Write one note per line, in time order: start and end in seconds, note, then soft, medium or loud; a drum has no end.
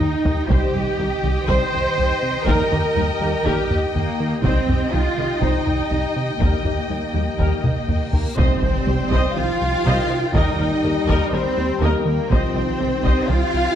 0.00 0.16 D#2 medium
0.00 4.40 D#3 medium
0.00 0.50 D#4 loud
0.00 4.40 D#4 medium
0.00 4.40 G4 medium
0.00 0.46 D#5 medium
0.00 4.40 D#5 medium
0.00 0.47 G5 medium
0.00 taiko low-mid medium
0.25 0.40 D#3 medium
0.25 taiko low loud
0.49 0.57 C2 medium
0.49 0.65 C2 medium
0.49 0.65 C3 medium
0.49 0.67 G3 medium
0.49 0.67 D#4 medium
0.49 1.49 G4 medium
0.49 0.73 C5 medium
0.49 4.39 D#5 medium
0.49 4.39 G5 medium
0.49 taiko loud
0.74 0.82 C2 medium
0.74 0.90 C2 medium
0.74 0.90 C4 medium
0.74 0.83 G4 medium
0.74 taiko low-mid medium
0.98 1.06 C2 medium
0.98 1.14 C2 medium
0.98 1.14 D#3 medium
0.98 1.08 D#4 medium
1.23 1.31 C2 medium
1.23 1.39 C2 medium
1.23 1.39 D#3 medium
1.23 1.32 G4 medium
1.46 1.54 C2 medium
1.46 1.64 C2 loud
1.46 1.63 C3 loud
1.46 1.65 G3 medium
1.46 1.64 D#4 medium
1.46 1.71 C5 medium
1.46 2.45 C5 loud
1.46 taiko medium
1.74 1.88 C2 medium
1.74 taiko low-mid medium
1.98 2.13 C2 medium
1.98 taiko low-mid medium
2.23 2.37 C3 medium
2.46 2.54 D#2 medium
2.46 2.62 D#2 loud
2.46 2.62 D#3 medium
2.46 2.65 G3 medium
2.46 2.64 D#4 medium
2.46 3.45 A#4 loud
2.46 2.70 A#4 medium
2.46 taiko loud
2.71 2.79 D#2 medium
2.71 2.86 D#2 medium
2.71 2.87 D#4 medium
2.71 2.79 G4 medium
2.71 taiko low-mid medium
2.95 3.03 D#2 medium
2.95 3.12 D#2 medium
2.95 3.11 G3 medium
2.95 3.04 D#4 medium
3.19 3.27 D#2 medium
3.19 3.36 D#2 medium
3.19 3.36 G3 medium
3.19 3.29 G4 medium
3.44 3.52 D#2 medium
3.44 3.60 D#2 medium
3.44 3.60 D#3 loud
3.44 3.62 G3 medium
3.44 3.62 D#4 medium
3.44 3.70 G4 medium
3.44 3.69 A#4 medium
3.44 taiko medium
3.71 3.85 D#2 medium
3.71 taiko low-mid soft
3.94 4.10 D#2 medium
3.94 4.40 A#3 medium
3.94 taiko low-mid medium
4.20 4.35 D#3 medium
4.42 4.50 C2 medium
4.42 4.59 C2 medium
4.42 4.59 C3 loud
4.42 8.33 D#3 medium
4.42 4.60 G3 medium
4.42 4.93 C4 medium
4.42 4.60 D#4 medium
4.42 8.33 D#4 medium
4.42 8.33 G4 medium
4.42 4.67 C5 medium
4.42 8.08 D#5 medium
4.42 8.33 D#5 medium
4.42 8.13 G5 medium
4.42 taiko loud
4.67 4.75 C2 medium
4.67 4.83 C2 medium
4.67 4.83 C4 medium
4.67 4.77 G4 medium
4.67 taiko low-mid medium
4.92 5.00 C2 medium
4.92 5.08 C2 medium
4.92 5.08 D#3 medium
4.92 5.01 D#4 soft
4.92 5.42 F4 loud
5.17 5.25 C2 soft
5.17 5.33 C2 medium
5.17 5.32 D#3 medium
5.17 5.25 G4 soft
5.41 5.49 C2 medium
5.41 5.57 C2 loud
5.41 5.57 C3 medium
5.41 5.58 G3 medium
5.41 5.59 D#4 medium
5.41 6.40 D#4 medium
5.41 5.65 C5 medium
5.41 taiko medium
5.67 5.82 C2 medium
5.67 taiko low-mid medium
5.91 6.06 C2 medium
5.91 taiko low-mid medium
6.16 6.31 C3 medium
6.39 6.47 D#2 medium
6.39 6.56 D#2 medium
6.39 6.55 D#3 loud
6.39 6.57 G3 medium
6.39 8.09 A#3 medium
6.39 6.58 D#4 medium
6.39 6.63 A#4 medium
6.39 taiko loud
6.39 reverse cymbal soft
6.64 6.72 D#2 soft
6.64 6.80 D#2 medium
6.64 6.80 D#4 medium
6.64 6.73 G4 soft
6.64 taiko low-mid soft
6.89 6.97 D#2 soft
6.89 7.05 D#2 medium
6.89 7.04 G3 medium
6.89 6.97 D#4 soft
7.13 7.21 D#2 soft
7.13 7.29 D#2 medium
7.13 7.29 G3 medium
7.13 7.22 G4 soft
7.37 7.45 D#2 medium
7.37 7.54 D#2 medium
7.37 7.53 D#3 medium
7.37 7.56 G3 soft
7.37 7.56 D#4 soft
7.37 7.62 A#4 medium
7.37 taiko medium
7.64 7.79 D#2 medium
7.64 taiko mid medium
7.89 8.03 D#2 medium
7.89 taiko low-mid medium
8.13 8.28 D#3 medium
8.13 8.36 A#3 medium
8.13 8.36 A#4 medium
8.13 taiko low medium
8.37 8.45 C2 medium
8.37 8.53 C2 loud
8.37 8.52 C3 loud
8.37 13.75 D#3 medium
8.37 9.32 G3 medium
8.37 9.34 C4 medium
8.37 13.75 D#4 medium
8.37 13.75 G4 medium
8.37 9.33 C5 medium
8.37 8.60 C5 medium
8.37 8.60 D#5 medium
8.37 13.75 D#5 medium
8.37 12.27 G5 medium
8.37 taiko loud
8.37 impact medium
8.63 8.71 C2 medium
8.63 8.77 C2 medium
8.63 8.77 D#3 medium
8.63 8.71 C5 medium
8.87 8.95 C2 medium
8.87 9.02 C3 medium
8.87 9.02 G3 medium
8.87 8.95 G4 medium
8.87 8.95 C5 medium
9.10 9.18 C2 medium
9.10 9.26 C2 loud
9.10 9.26 C3 loud
9.10 9.35 C5 medium
9.10 9.35 D#5 medium
9.10 taiko medium
9.35 9.43 C2 medium
9.35 9.51 C2 medium
9.35 9.51 D#3 medium
9.35 9.85 F3 medium
9.35 10.32 F4 loud
9.35 9.45 C5 medium
9.35 10.34 F5 loud
9.61 9.76 C2 medium
9.85 9.93 C2 medium
9.85 10.01 C2 loud
9.85 10.00 C3 loud
9.85 10.34 D#3 medium
9.85 10.08 C5 medium
9.85 10.08 D#5 medium
10.10 10.25 C3 medium
10.33 10.41 D#2 medium
10.33 10.49 D#2 loud
10.33 10.49 D#3 loud
10.33 12.32 G3 medium
10.33 11.32 D#4 medium
10.33 10.58 A#4 medium
10.33 11.30 D#5 medium
10.33 10.58 D#5 medium
10.33 taiko loud
10.57 10.65 D#2 medium
10.57 10.74 D#2 medium
10.57 10.74 G3 medium
10.57 10.68 A#4 medium
10.82 10.90 D#2 medium
10.82 10.99 D#3 medium
10.82 10.99 A#3 medium
10.82 10.92 G4 soft
10.82 10.92 A#4 soft
11.06 11.14 D#2 medium
11.06 11.24 D#2 loud
11.06 11.24 D#3 medium
11.06 11.31 A#4 medium
11.06 11.31 D#5 medium
11.06 taiko medium
11.31 11.39 D#2 soft
11.31 11.47 D#2 medium
11.31 11.48 G3 medium
11.31 11.82 C4 loud
11.31 11.41 A#4 medium
11.31 11.80 C5 medium
11.58 11.72 D#2 medium
11.80 11.88 D#2 medium
11.80 11.96 D#2 medium
11.80 11.97 D#3 medium
11.80 12.04 A#3 medium
11.80 12.04 A#4 medium
11.80 12.05 A#4 medium
11.80 12.05 D#5 medium
12.05 12.20 D#3 medium
12.05 12.30 A#3 medium
12.05 12.30 A#4 medium
12.30 12.38 C2 medium
12.30 12.45 C2 loud
12.30 12.46 C3 loud
12.30 12.79 F3 medium
12.30 13.29 C4 medium
12.30 13.29 C5 medium
12.30 12.54 C5 medium
12.30 12.54 D#5 medium
12.30 13.75 G5 medium
12.30 taiko loud
12.55 12.63 C2 medium
12.55 12.70 C2 medium
12.55 12.70 D#3 medium
12.55 12.64 C5 soft
12.80 12.88 C2 medium
12.80 12.95 C3 medium
12.80 13.28 D#3 medium
12.80 12.95 G3 medium
12.80 12.89 G4 medium
12.80 12.89 C5 medium
13.03 13.11 C2 medium
13.03 13.19 C2 medium
13.03 13.19 C3 medium
13.03 13.27 C5 medium
13.03 13.27 D#5 medium
13.03 taiko medium
13.28 13.36 C2 medium
13.28 13.44 C2 medium
13.28 13.44 D#3 medium
13.28 13.75 C4 medium
13.28 13.75 F4 loud
13.28 13.38 C5 medium
13.28 13.75 F5 loud
13.54 13.69 C2 medium